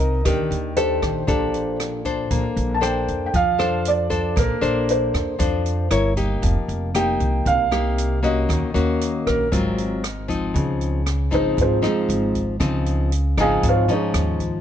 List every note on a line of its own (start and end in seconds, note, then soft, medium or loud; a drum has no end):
0.00 0.21 C2 medium
0.00 0.22 C3 medium
0.00 0.23 C4 soft
0.00 0.23 D#4 medium
0.00 0.23 A#4 medium
0.00 0.27 D#5 medium
0.00 closed hi-hat soft
0.25 0.37 D#2 loud
0.25 1.25 D#3 medium
0.25 0.72 D4 medium
0.25 0.73 G4 medium
0.25 0.78 A#4 medium
0.25 kick medium
0.25 cross-stick medium
0.25 closed hi-hat soft
0.51 0.98 D#2 medium
0.51 closed hi-hat soft
0.76 1.24 D4 soft
0.76 1.24 G4 soft
0.76 1.24 A4 medium
0.76 1.75 C5 medium
0.76 closed hi-hat soft
1.02 1.26 A#1 medium
1.02 kick soft
1.02 cross-stick medium
1.02 closed hi-hat soft
1.27 2.27 A#1 medium
1.27 2.28 A#2 medium
1.27 2.01 D4 medium
1.27 2.01 G4 soft
1.27 2.01 A4 medium
1.27 kick medium
1.27 closed hi-hat soft
1.54 closed hi-hat soft
1.80 cross-stick medium
1.80 closed hi-hat soft
2.05 2.80 D4 medium
2.05 2.80 A4 medium
2.05 2.81 C5 medium
2.05 kick soft
2.05 closed hi-hat soft
2.31 2.43 A#1 medium
2.31 3.31 A#3 medium
2.31 kick medium
2.31 closed hi-hat soft
2.57 3.04 A#1 medium
2.57 closed hi-hat soft
2.74 2.82 A5 medium
2.81 3.33 D4 soft
2.81 3.33 A4 soft
2.81 3.33 C5 soft
2.81 3.25 G5 medium
2.81 cross-stick medium
2.81 closed hi-hat soft
3.08 3.32 F2 medium
3.08 kick soft
3.08 closed hi-hat soft
3.26 3.33 G5 medium
3.34 4.33 F2 medium
3.34 4.34 F3 medium
3.34 3.88 F5 loud
3.34 kick soft
3.34 closed hi-hat soft
3.58 4.06 D4 medium
3.58 4.06 A4 medium
3.58 4.07 C5 medium
3.58 cross-stick medium
3.58 closed hi-hat soft
3.85 4.40 D5 medium
3.85 closed hi-hat soft
4.10 4.58 D4 medium
4.10 4.58 A4 medium
4.10 4.58 C5 medium
4.10 kick soft
4.10 closed hi-hat soft
4.36 4.49 A#1 medium
4.36 5.37 A#3 medium
4.36 4.91 A#4 medium
4.36 kick medium
4.36 cross-stick medium
4.36 closed hi-hat soft
4.61 5.10 A#1 medium
4.61 5.35 D4 medium
4.61 5.35 A4 medium
4.61 5.35 C5 medium
4.61 closed hi-hat soft
4.89 5.88 C5 medium
4.89 closed hi-hat soft
5.14 5.38 F2 medium
5.14 kick soft
5.14 cross-stick medium
5.14 closed hi-hat soft
5.39 5.87 F2 medium
5.39 5.88 F3 soft
5.39 5.89 D4 soft
5.39 5.89 A4 medium
5.39 5.89 C5 medium
5.39 kick medium
5.39 closed hi-hat soft
5.66 closed hi-hat soft
5.91 6.39 G1 medium
5.91 6.12 E4 medium
5.91 6.13 A#4 medium
5.91 6.13 C#5 medium
5.91 cross-stick medium
5.91 closed hi-hat soft
6.17 6.90 A#3 soft
6.17 6.90 D#4 medium
6.17 6.90 G4 medium
6.17 kick soft
6.17 closed hi-hat soft
6.42 6.54 F1 loud
6.42 7.43 F3 medium
6.42 kick medium
6.42 closed hi-hat soft
6.68 7.16 F1 medium
6.68 closed hi-hat soft
6.95 7.67 A#3 medium
6.95 7.68 D#4 medium
6.95 7.68 G4 medium
6.95 7.48 G5 medium
6.95 cross-stick medium
6.95 closed hi-hat soft
7.20 7.44 C2 medium
7.20 kick soft
7.20 closed hi-hat soft
7.45 8.45 C2 medium
7.45 8.46 C3 soft
7.45 8.26 F5 loud
7.45 kick soft
7.45 closed hi-hat soft
7.71 8.18 A#3 medium
7.71 8.19 D#4 medium
7.71 8.19 G4 medium
7.71 cross-stick medium
7.71 closed hi-hat soft
7.98 closed hi-hat soft
8.23 8.70 A#3 medium
8.23 8.70 C#4 medium
8.23 8.70 F#4 medium
8.23 9.29 D#5 medium
8.23 kick soft
8.23 closed hi-hat soft
8.49 8.61 D#2 medium
8.49 9.49 D#3 medium
8.49 kick medium
8.49 cross-stick medium
8.49 closed hi-hat soft
8.74 9.22 D#2 medium
8.74 9.47 A#3 medium
8.74 9.47 C#4 medium
8.74 9.48 F#4 medium
8.74 closed hi-hat soft
9.01 closed hi-hat soft
9.27 9.50 A#1 medium
9.27 10.25 A#4 medium
9.27 kick soft
9.27 cross-stick medium
9.27 closed hi-hat soft
9.52 10.51 G#1 medium
9.52 10.52 G#2 medium
9.52 10.03 F#3 soft
9.52 10.03 C4 medium
9.52 10.03 F4 medium
9.52 kick medium
9.52 closed hi-hat soft
9.78 closed hi-hat soft
10.04 cross-stick medium
10.04 closed hi-hat soft
10.28 11.01 F3 medium
10.28 11.02 C4 medium
10.28 11.02 D#4 medium
10.28 kick soft
10.28 closed hi-hat soft
10.54 11.28 C#2 medium
10.54 11.54 C#3 medium
10.54 kick medium
10.54 closed hi-hat soft
10.81 closed hi-hat soft
11.06 cross-stick medium
11.06 closed hi-hat soft
11.31 11.56 G#1 medium
11.31 11.78 F3 medium
11.31 11.79 C4 medium
11.31 11.79 D#4 medium
11.31 11.58 D#4 medium
11.31 11.58 G#4 medium
11.31 11.58 C5 medium
11.31 11.57 D#5 medium
11.31 kick soft
11.31 closed hi-hat soft
11.57 11.81 G#1 medium
11.57 12.57 G#2 medium
11.57 kick soft
11.57 closed hi-hat soft
11.61 11.84 C4 medium
11.61 11.85 F4 medium
11.61 11.84 G#4 medium
11.61 11.84 C5 medium
11.82 12.55 F3 medium
11.82 12.56 C4 medium
11.82 12.56 D#4 medium
11.82 12.32 G#4 medium
11.82 cross-stick medium
11.82 closed hi-hat soft
11.86 12.32 G#3 soft
11.86 12.33 D#4 soft
11.86 12.33 F4 soft
12.08 12.56 G#1 medium
12.08 closed hi-hat soft
12.35 kick soft
12.35 closed hi-hat soft
12.60 13.33 C#2 medium
12.60 13.60 C#3 medium
12.60 13.11 F3 soft
12.60 13.11 C4 medium
12.60 13.11 D#4 medium
12.60 kick medium
12.60 cross-stick medium
12.60 closed hi-hat soft
12.86 closed hi-hat soft
13.12 closed hi-hat soft
13.37 13.61 G#1 medium
13.37 13.85 F3 medium
13.37 13.85 C4 medium
13.37 13.85 D#4 medium
13.37 13.64 G#4 medium
13.37 13.64 D#5 medium
13.37 13.64 F5 medium
13.37 13.64 G#5 loud
13.37 kick soft
13.37 cross-stick medium
13.37 closed hi-hat soft
13.63 13.87 G#1 medium
13.63 14.61 G#2 soft
13.63 kick medium
13.63 closed hi-hat soft
13.69 13.90 F4 medium
13.69 13.91 C5 medium
13.69 13.90 C#5 medium
13.69 13.91 F5 medium
13.88 14.61 F3 medium
13.88 14.38 C#4 medium
13.88 14.61 D#4 medium
13.88 14.38 F4 soft
13.88 14.38 G#4 medium
13.88 14.38 C#5 medium
13.88 closed hi-hat soft
14.14 14.61 D#2 medium
14.14 cross-stick medium
14.14 closed hi-hat soft
14.40 kick soft
14.40 closed hi-hat soft